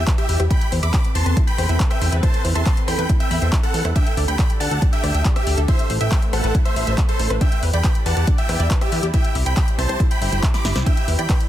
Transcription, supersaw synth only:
0.18 G4 E5
0.50 G5 B5
0.83 B5 D6
1.15 A5 C6
1.47 G5 B5
1.90 E5 G5
2.23 C5 A5
2.55 A5 C6
2.88 G5 B5
3.20 E5 G5
3.63 A4 F#5
3.95 E5 G5
4.28 G5 B5
4.60 F#5 A5
4.93 E5 G5
5.36 G4 E5
5.68 C5 E5
6.01 E5 G5
6.33 A4 F#5
6.65 C5 E5
7.09 A4 C5
7.41 E5 G5
7.74 G5 B5
8.06 F#5 A5
8.38 E5 G5
8.82 G4 E5
9.14 E5 G5
9.46 G5 B5
9.79 C5 A5
10.11 G5 B5
10.54 B5 D6
10.86 E5 G5
11.19 G5 B5

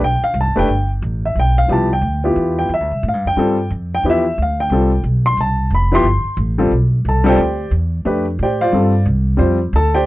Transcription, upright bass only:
0.01 B1
0.22 muted upright bass stroke
0.34 C2
0.45 G1
0.57 F1
0.68 G1
1.02 A1
1.35 B1
1.69 C2
2.01 D2
2.36 E2
2.69 F2
2.80 D2
2.91 C2
3.03 A2
3.14 G2
3.25 F2
3.36 G2
3.70 F2
4.03 E2
4.38 D2
4.70 C2
5.04 B1
5.37 C2
5.70 F1
6.03 G1
6.24 muted upright bass stroke
6.37 A1
6.71 B1
7.05 C2
7.37 D2
7.71 E2
8.05 F2
8.39 A2
8.72 G2
9.05 C2
9.39 F2
9.73 D2

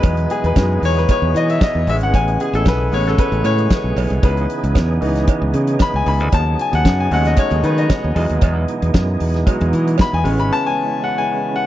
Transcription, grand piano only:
Already playing: F#3 G#3 D#4 B4
0.31 G#4
0.46 B4
0.58 F#3 G#3 D#4
0.85 C#5
0.98 B4
1.11 C#5
1.37 D#5
1.50 E5
1.63 D#5
1.88 G#3 B3 C#4 E5
2.03 F#5
2.15 G#5
2.41 G#4
2.55 A4
2.68 B4
2.92 G#3 B3 C#4 C#5
3.08 A4
3.19 B4
3.45 C#5
4.24 B4
5.01 E3 B3 D#4
5.82 B5
5.96 G#5
6.08 B5
6.34 A5
6.61 G#5
6.75 F#5
7.00 G#5
7.11 G#3 A3 C#4 D#4 F#5
7.27 D#5
7.39 C#5
7.65 B4
7.78 D#5
8.15 F#3 G#3 D#4
9.46 F#3 G#3 D#4
10.01 B5
10.14 G#5
10.24 G#3 B3 C#4
10.40 B5
10.53 A5
10.66 G#5
11.04 F#5
11.18 G#5
11.56 F#5

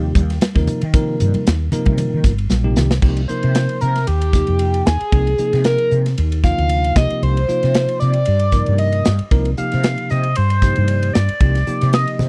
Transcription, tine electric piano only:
Already playing: C3 F3 A#3 D#4 G4
0.55 C3 F3 A#3 D#4 A#4
0.94 C3 F3 A#3 D#4 A#4
1.73 C3 F3 A#3 D#4 A#4
2.64 C3 F3 A#3 D#4 G4
3.03 C3 F3 A#3 D#4 G4
3.29 C3 F3 A#3 D#4 A#4
4.35 C3 F3 A#3 D#4 G4
5.12 C3 F3 A#3 D#4 G#4
5.39 C3 F3 A#3 D#4 G#4
6.43 C3 F3 A#3 D#4 F4
6.96 C3 F3 A#3 D#4 G4
7.48 C3 F3 A#3 D#4 F4
8.53 C3 F3 A#3 D#4 A#4
9.32 C3 F3 A#3 D#4 A#4
9.58 C3 F3 A#3 D#4 G4
10.63 C3 F3 A#3 D#4 G4
11.40 C3 F3 A#3 D#4 G4
11.67 C3 F3 A#3 D#4 G4

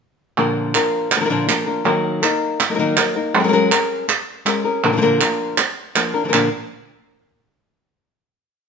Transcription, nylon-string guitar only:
0.37 A#2 D3 F3 A#3 D4 A#4
0.75 F3 A#3 D4 A#4
1.11 muted nylon-string guitar stroke
1.16 D3 F3 A#3 D4 A#4
1.20 D3 F3 A#3 D4 A#4
1.25 D3 F3 A#3 D4 A#4
1.30 A#2 D3 F3 A#3 D4 A#4
1.47 F3 A#3 D4 A#4
1.66 F3 A#3 D4 A#4
1.84 D#3 F#3 A#3 D#4 A#4
2.22 A#3 D#4 A#4
2.60 muted nylon-string guitar stroke
2.69 F#3 A#3 D#4 A#4
2.74 F#3 A#3 D#4 A#4
2.79 D#3 F#3 A#3 D#4 A#4
2.97 F#3 A#3 D#4 A#4
3.16 A#3 D#4 A#4
3.34 F#3 G#3 C#4 G#4 A#4
3.39 G#3 C#4 G#4 A#4
3.43 G#3 C#4 G#4 A#4
3.48 G#3 C#4 G#4 A#4
3.52 F#3 G#3 C#4 G#4 A#4
3.71 C#4 G#4 A#4
4.08 muted nylon-string guitar stroke
4.45 G#3 C#4 G#4 A#4
4.65 C#4 G#4 A#4
4.83 A#2 D3 F3 A#3 D4 A#4
4.92 D3 F3 A#3 D4 A#4
4.97 D3 F3 A#3 D4 A#4
5.01 A#2 D3 F3 A#3 D4 A#4
5.21 F3 A#3 D4 A#4
5.58 muted nylon-string guitar stroke
5.95 F3 A#3 D4 A#4
6.14 F3 A#3 D4 A#4
6.24 D3 F3 A#3 D4 A#4
6.28 D3 F3 A#3 D4 A#4
6.33 A#2 D3 F3 A#3 D4 A#4

